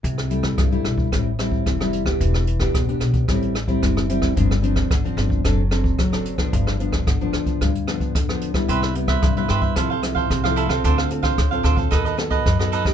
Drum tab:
HH |xxxxxxx-x-x-xxx-|x-xxxxxxxxxxxxx-|xxxxxxx-x-x-xxx-|x-xxxxxxxxxxxxx-|
SD |-r-rr-r-r-r-rr-r|-r-rr-r-r-r-rr-r|-r-rr-r-r-r-rr-r|-r-rr-r-r-r-rr-r|
BD |o--oo--oo--oo--o|o--oo--oo--oo--o|o--oo--oo--oo--o|o--oo--oo--oo--o|

HH |xxxxxxx-x-x-xxx-|x-xxxxxxxxxxxxx-|
SD |-r-rr-r-r-r-rr-r|-r-rr-r-r-r-rr-r|
BD |o--oo--oo--oo--o|o--oo--oo--oo--o|